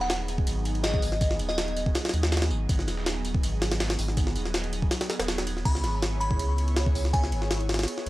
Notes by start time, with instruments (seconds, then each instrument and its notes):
Already playing: sub bass D#1, analog synth pad F#3 B3 D#4 G#4
0.01 synth bell F#5, snare
0.10 synth bell F#5, snare, ride, tambourine
0.28 ride, tambourine
0.38 kick
0.46 sub bass G#1, analog synth pad F#3 B3 D#4 G#4, ride, tambourine
0.65 ride, tambourine
0.75 ride
0.84 synth bell D#5, snare, open hi-hat, ride
0.94 kick
1.02 sub bass G#1, open hi-hat, tambourine
1.12 snare
1.21 analog synth pad F#3 B3 D#4 G#4, kick, ride, tambourine
1.31 snare
1.39 sub bass D#1, ride, tambourine
1.49 synth bell D#5, snare, closed hi-hat
1.58 snare, ride, tambourine
1.68 ride
1.76 ride, tambourine
1.86 kick
1.95 analog synth pad F#3 B3 D#4 G#4, snare, ride, tambourine
2.05 snare, ride
2.09 snare, ride, tambourine
2.13 sub bass D#2, ride
2.23 snare
2.32 snare, ride, tambourine
2.37 snare, ride
2.42 snare, ride
2.50 sub bass G#1, tambourine
2.69 sub bass G#1, analog synth pad F#3 B3 D#4 G#4, kick, ride, tambourine
2.79 snare
2.88 sub bass D#1, snare, ride, tambourine
2.97 snare
3.06 snare, ride, tambourine
3.25 ride, tambourine
3.34 kick
3.42 sub bass G#1, analog synth pad F#3 B3 D#4 G#4, ride, tambourine
3.62 snare, ride, tambourine
3.72 snare, ride
3.80 snare, open hi-hat, ride
3.90 snare, ride
3.99 sub bass G#1, open hi-hat, tambourine
4.08 snare
4.17 analog synth pad F#3 B3 D#4 G#4, kick, ride, tambourine
4.27 snare
4.36 sub bass D#1, ride, tambourine
4.45 snare, closed hi-hat
4.54 snare, ride, tambourine
4.64 ride
4.73 ride, tambourine
4.82 kick
4.90 analog synth pad F#3 B3 D#4 G#4, snare, ride, tambourine
5.01 snare, ride
5.10 snare, ride, tambourine
5.19 sub bass D#1, snare
5.28 snare, ride, tambourine
5.38 snare, ride
5.47 ride, tambourine
5.57 snare
5.65 sub bass C#2, analog synth pad B3 E4 G#4 C#5, synth bell B5, kick, crash, ride
5.75 snare
5.84 sub bass G#1, snare, ride
6.03 snare, ride
6.20 synth bell B5, ride
6.31 kick
6.39 sub bass C#2, analog synth pad B3 E4 G#4 C#5, ride
6.58 ride
6.68 ride
6.76 snare, ride
6.86 kick
6.95 sub bass C#2, open hi-hat
7.05 snare
7.13 analog synth pad B3 E4 G#4 C#5, synth bell G#5, kick, ride
7.24 snare
7.32 sub bass G#1, ride
7.42 snare
7.51 snare, ride
7.60 ride
7.69 snare, ride
7.74 snare, ride
7.79 snare, ride
7.83 analog synth pad B3 E4 G#4 C#5, snare, ride
7.88 ride
7.98 snare
8.06 sub bass G#1, ride